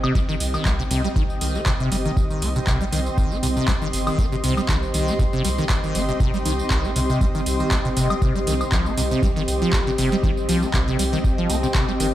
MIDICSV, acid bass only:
0, 0, Header, 1, 2, 480
1, 0, Start_track
1, 0, Key_signature, -3, "minor"
1, 0, Tempo, 504202
1, 145, Time_signature, 4, 2, 24, 8
1, 11557, End_track
2, 0, Start_track
2, 0, Title_t, "Acid bass"
2, 0, Program_c, 0, 38
2, 34, Note_on_c, 0, 48, 102
2, 125, Note_off_c, 0, 48, 0
2, 144, Note_on_c, 0, 55, 102
2, 187, Note_off_c, 0, 55, 0
2, 273, Note_on_c, 0, 51, 102
2, 334, Note_off_c, 0, 51, 0
2, 514, Note_on_c, 0, 51, 75
2, 624, Note_on_c, 0, 58, 82
2, 638, Note_off_c, 0, 51, 0
2, 696, Note_off_c, 0, 58, 0
2, 754, Note_on_c, 0, 48, 101
2, 790, Note_off_c, 0, 48, 0
2, 864, Note_on_c, 0, 48, 101
2, 972, Note_off_c, 0, 48, 0
2, 994, Note_on_c, 0, 55, 96
2, 1031, Note_off_c, 0, 55, 0
2, 1104, Note_on_c, 0, 51, 96
2, 1176, Note_off_c, 0, 51, 0
2, 1344, Note_on_c, 0, 51, 74
2, 1474, Note_on_c, 0, 58, 75
2, 1488, Note_off_c, 0, 51, 0
2, 1535, Note_off_c, 0, 58, 0
2, 1584, Note_on_c, 0, 48, 98
2, 1627, Note_off_c, 0, 48, 0
2, 1714, Note_on_c, 0, 48, 103
2, 1805, Note_off_c, 0, 48, 0
2, 1824, Note_on_c, 0, 55, 100
2, 1867, Note_off_c, 0, 55, 0
2, 1954, Note_on_c, 0, 51, 98
2, 2015, Note_off_c, 0, 51, 0
2, 2193, Note_on_c, 0, 51, 76
2, 2303, Note_on_c, 0, 58, 75
2, 2317, Note_off_c, 0, 51, 0
2, 2375, Note_off_c, 0, 58, 0
2, 2434, Note_on_c, 0, 48, 99
2, 2470, Note_off_c, 0, 48, 0
2, 2543, Note_on_c, 0, 48, 98
2, 2651, Note_off_c, 0, 48, 0
2, 2673, Note_on_c, 0, 55, 103
2, 2710, Note_off_c, 0, 55, 0
2, 2783, Note_on_c, 0, 51, 103
2, 2855, Note_off_c, 0, 51, 0
2, 3023, Note_on_c, 0, 51, 81
2, 3154, Note_on_c, 0, 58, 76
2, 3168, Note_off_c, 0, 51, 0
2, 3215, Note_off_c, 0, 58, 0
2, 3263, Note_on_c, 0, 48, 94
2, 3307, Note_off_c, 0, 48, 0
2, 3394, Note_on_c, 0, 48, 100
2, 3485, Note_off_c, 0, 48, 0
2, 3503, Note_on_c, 0, 55, 97
2, 3547, Note_off_c, 0, 55, 0
2, 3634, Note_on_c, 0, 51, 99
2, 3695, Note_off_c, 0, 51, 0
2, 3874, Note_on_c, 0, 51, 75
2, 3984, Note_on_c, 0, 58, 84
2, 3998, Note_off_c, 0, 51, 0
2, 4056, Note_off_c, 0, 58, 0
2, 4114, Note_on_c, 0, 48, 103
2, 4150, Note_off_c, 0, 48, 0
2, 4224, Note_on_c, 0, 48, 100
2, 4332, Note_off_c, 0, 48, 0
2, 4354, Note_on_c, 0, 55, 102
2, 4391, Note_off_c, 0, 55, 0
2, 4463, Note_on_c, 0, 51, 97
2, 4535, Note_off_c, 0, 51, 0
2, 4704, Note_on_c, 0, 51, 77
2, 4835, Note_on_c, 0, 58, 75
2, 4849, Note_off_c, 0, 51, 0
2, 4895, Note_off_c, 0, 58, 0
2, 4944, Note_on_c, 0, 48, 100
2, 4987, Note_off_c, 0, 48, 0
2, 5074, Note_on_c, 0, 48, 97
2, 5165, Note_off_c, 0, 48, 0
2, 5184, Note_on_c, 0, 55, 96
2, 5227, Note_off_c, 0, 55, 0
2, 5315, Note_on_c, 0, 51, 100
2, 5375, Note_off_c, 0, 51, 0
2, 5555, Note_on_c, 0, 51, 78
2, 5664, Note_on_c, 0, 58, 76
2, 5678, Note_off_c, 0, 51, 0
2, 5736, Note_off_c, 0, 58, 0
2, 5794, Note_on_c, 0, 48, 101
2, 5831, Note_off_c, 0, 48, 0
2, 5905, Note_on_c, 0, 48, 104
2, 6012, Note_off_c, 0, 48, 0
2, 6035, Note_on_c, 0, 55, 103
2, 6071, Note_off_c, 0, 55, 0
2, 6145, Note_on_c, 0, 51, 99
2, 6216, Note_off_c, 0, 51, 0
2, 6384, Note_on_c, 0, 51, 78
2, 6514, Note_on_c, 0, 58, 79
2, 6529, Note_off_c, 0, 51, 0
2, 6575, Note_off_c, 0, 58, 0
2, 6625, Note_on_c, 0, 48, 104
2, 6667, Note_off_c, 0, 48, 0
2, 6755, Note_on_c, 0, 48, 98
2, 6845, Note_off_c, 0, 48, 0
2, 6864, Note_on_c, 0, 55, 100
2, 6907, Note_off_c, 0, 55, 0
2, 6994, Note_on_c, 0, 51, 100
2, 7055, Note_off_c, 0, 51, 0
2, 7235, Note_on_c, 0, 51, 74
2, 7344, Note_on_c, 0, 58, 80
2, 7358, Note_off_c, 0, 51, 0
2, 7416, Note_off_c, 0, 58, 0
2, 7474, Note_on_c, 0, 48, 99
2, 7510, Note_off_c, 0, 48, 0
2, 7584, Note_on_c, 0, 48, 100
2, 7691, Note_off_c, 0, 48, 0
2, 7714, Note_on_c, 0, 55, 99
2, 7751, Note_off_c, 0, 55, 0
2, 7824, Note_on_c, 0, 48, 104
2, 7932, Note_off_c, 0, 48, 0
2, 7954, Note_on_c, 0, 55, 106
2, 7991, Note_off_c, 0, 55, 0
2, 8064, Note_on_c, 0, 51, 100
2, 8136, Note_off_c, 0, 51, 0
2, 8304, Note_on_c, 0, 53, 98
2, 8434, Note_on_c, 0, 58, 78
2, 8448, Note_off_c, 0, 53, 0
2, 8495, Note_off_c, 0, 58, 0
2, 8544, Note_on_c, 0, 48, 102
2, 8587, Note_off_c, 0, 48, 0
2, 8673, Note_on_c, 0, 48, 96
2, 8765, Note_off_c, 0, 48, 0
2, 8783, Note_on_c, 0, 55, 100
2, 8827, Note_off_c, 0, 55, 0
2, 8913, Note_on_c, 0, 51, 101
2, 8974, Note_off_c, 0, 51, 0
2, 9154, Note_on_c, 0, 53, 103
2, 9264, Note_on_c, 0, 58, 82
2, 9278, Note_off_c, 0, 53, 0
2, 9336, Note_off_c, 0, 58, 0
2, 9394, Note_on_c, 0, 48, 103
2, 9431, Note_off_c, 0, 48, 0
2, 9504, Note_on_c, 0, 48, 103
2, 9612, Note_off_c, 0, 48, 0
2, 9635, Note_on_c, 0, 55, 99
2, 9671, Note_off_c, 0, 55, 0
2, 9744, Note_on_c, 0, 51, 107
2, 9816, Note_off_c, 0, 51, 0
2, 9984, Note_on_c, 0, 53, 102
2, 10115, Note_on_c, 0, 58, 78
2, 10130, Note_off_c, 0, 53, 0
2, 10175, Note_off_c, 0, 58, 0
2, 10224, Note_on_c, 0, 48, 103
2, 10267, Note_off_c, 0, 48, 0
2, 10354, Note_on_c, 0, 48, 104
2, 10445, Note_off_c, 0, 48, 0
2, 10464, Note_on_c, 0, 55, 107
2, 10507, Note_off_c, 0, 55, 0
2, 10594, Note_on_c, 0, 51, 96
2, 10654, Note_off_c, 0, 51, 0
2, 10834, Note_on_c, 0, 53, 96
2, 10945, Note_on_c, 0, 58, 74
2, 10959, Note_off_c, 0, 53, 0
2, 11016, Note_off_c, 0, 58, 0
2, 11074, Note_on_c, 0, 48, 100
2, 11110, Note_off_c, 0, 48, 0
2, 11183, Note_on_c, 0, 48, 103
2, 11291, Note_off_c, 0, 48, 0
2, 11314, Note_on_c, 0, 55, 102
2, 11350, Note_off_c, 0, 55, 0
2, 11424, Note_on_c, 0, 51, 101
2, 11496, Note_off_c, 0, 51, 0
2, 11557, End_track
0, 0, End_of_file